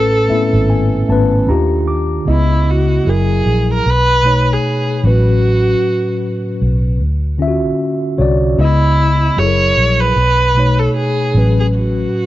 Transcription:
Already playing: fingered electric bass A1, tine electric piano A2 A3 C#4 B4, viola A4
0.28 tine electric piano A3 B3 C4 E4 E5, muted fingered electric bass stroke
0.37 tine electric piano C#4
0.53 fingered electric bass G#1
0.70 tine electric piano G#5
1.08 fingered electric bass G#1, tine electric piano A3 B3 C#4 A5
1.12 tine electric piano B4
1.47 fingered electric bass D#2, tine electric piano D#3 D4 F4 G4 A#5
1.88 tine electric piano D6
2.25 fingered electric bass C#2, tine electric piano C#3 B3 D#5
2.30 tine electric piano E4, viola E4
2.70 viola F#4
3.05 fingered electric bass F#1, tine electric piano F#3 E4 G#4
3.09 viola G#4, tine electric piano A#4
3.46 fingered electric bass A#1
3.74 viola A#4
3.86 fingered electric bass B1, viola B4
4.23 tine electric piano B2 A3 D#4
4.27 tine electric piano C#5
4.53 viola G#4
5.03 fingered electric bass A1, tine electric piano A2 F#3 C#4, viola F#4
5.07 tine electric piano B4
6.62 fingered electric bass B1
7.01 fingered electric bass D2
7.38 tine electric piano D3 C#4 F4 E5
7.48 tine electric piano F#4
8.18 fingered electric bass C2, tine electric piano D3 F#4 C#5 D5
8.57 fingered electric bass C#2, tine electric piano C#3 B3 E4 D#5, viola E4
9.36 fingered electric bass F#1, tine electric piano F#3 E4 G#4 A4, viola C#5
9.47 tine electric piano A#4
9.77 fingered electric bass A#1
10.00 viola B4
10.16 fingered electric bass B1
10.54 tine electric piano B2 A3 D#4
10.59 tine electric piano C#5
10.79 viola A4
10.96 viola G#4
11.34 fingered electric bass A1, tine electric piano A2 F#3 C#4
11.38 tine electric piano B4
11.60 viola G#4
11.74 viola F#4

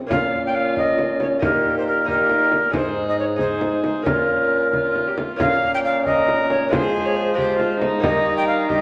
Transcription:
0.07 bassoon A#2, lute A#2 A#3 C#4 F4, trombone C#4, viola F4, frame drum
0.11 recorder F5
0.46 recorder G5
0.55 recorder F5
0.77 recorder D#5, frame drum
0.98 frame drum
1.20 recorder C#5, frame drum
1.39 bassoon A#2, lute A#2 A#3 D#4 G4, trombone D#4, viola G4, frame drum
1.44 recorder A#4
1.78 recorder C5
1.87 recorder A#4
2.05 lute A#3 D#4 G4, trombone D#4, viola G4, frame drum
2.09 recorder A#4
2.29 frame drum
2.52 frame drum
2.70 bassoon G#2, lute G#2 D#4 G#4, trombone D#4, viola G#4, recorder C5, frame drum
3.08 recorder D#5
3.19 recorder C#5
3.36 lute D#4 G#4, trombone D#4, frame drum
3.40 viola G#4, recorder C5
3.61 frame drum
3.84 recorder C5, frame drum
4.02 bassoon A#2, lute A#3 C#4 F4, trombone C#4, recorder A#4, frame drum
4.06 lute A#2, viola F4
4.73 viola F4, frame drum
4.96 frame drum
5.08 viola G4
5.17 viola F4, frame drum
5.36 bassoon A#2, lute A#2 A#3 C#4 F4, trombone C#4, frame drum
5.40 recorder F5
5.74 recorder G5
5.84 recorder F5
6.05 viola A#4, recorder D#5, frame drum
6.28 frame drum
6.50 recorder C#5, frame drum
6.69 bassoon F3, lute G#3 C4 F4, trombone G#3, viola G#4, recorder C5, frame drum
6.73 lute F3
7.06 recorder C#5
7.16 recorder C5
7.34 lute G#3 C4 F4, trombone G#3, viola G4, recorder C5
7.38 frame drum
7.59 viola F4, frame drum
7.80 viola D#4, frame drum
8.00 bassoon D#3, lute D#3 A#3 D#4 G4, trombone G3
8.04 recorder D#5, frame drum
8.37 recorder G5
8.47 recorder F5
8.69 trombone G3, viola G4, recorder D#5, frame drum

